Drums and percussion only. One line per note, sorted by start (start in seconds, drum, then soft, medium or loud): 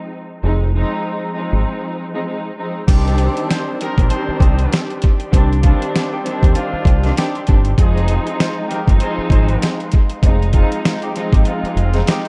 2.88 kick loud
2.88 closed hi-hat medium
2.88 crash loud
3.08 closed hi-hat soft
3.18 closed hi-hat medium
3.37 closed hi-hat medium
3.51 snare loud
3.51 closed hi-hat medium
3.81 closed hi-hat medium
3.98 kick loud
3.98 closed hi-hat medium
4.10 closed hi-hat medium
4.40 kick loud
4.40 closed hi-hat medium
4.59 closed hi-hat medium
4.72 snare loud
4.72 closed hi-hat loud
4.90 closed hi-hat soft
5.02 kick loud
5.02 closed hi-hat medium
5.20 closed hi-hat medium
5.33 kick loud
5.33 closed hi-hat medium
5.53 closed hi-hat soft
5.63 kick loud
5.63 closed hi-hat medium
5.82 closed hi-hat medium
5.96 snare loud
5.96 closed hi-hat medium
6.26 closed hi-hat medium
6.43 kick loud
6.43 closed hi-hat medium
6.55 closed hi-hat medium
6.85 kick loud
6.85 closed hi-hat medium
7.04 snare soft
7.04 closed hi-hat soft
7.17 snare loud
7.17 closed hi-hat loud
7.35 closed hi-hat soft
7.47 kick loud
7.47 closed hi-hat medium
7.65 closed hi-hat medium
7.78 kick loud
7.78 closed hi-hat loud
7.97 closed hi-hat soft
8.08 closed hi-hat medium
8.27 closed hi-hat medium
8.40 snare loud
8.40 closed hi-hat medium
8.71 closed hi-hat medium
8.88 kick loud
8.88 closed hi-hat medium
9.00 closed hi-hat medium
9.30 kick loud
9.30 closed hi-hat medium
9.49 closed hi-hat soft
9.62 snare loud
9.62 closed hi-hat loud
9.80 closed hi-hat soft
9.92 kick loud
9.92 closed hi-hat medium
10.10 closed hi-hat medium
10.23 kick loud
10.23 closed hi-hat medium
10.42 closed hi-hat soft
10.53 kick loud
10.53 closed hi-hat medium
10.72 closed hi-hat medium
10.85 snare loud
10.85 closed hi-hat medium
11.02 closed hi-hat soft
11.16 closed hi-hat medium
11.33 kick loud
11.33 closed hi-hat medium
11.45 closed hi-hat medium
11.65 closed hi-hat soft
11.77 closed hi-hat medium
11.94 snare soft
11.94 closed hi-hat medium
12.07 snare loud
12.07 closed hi-hat loud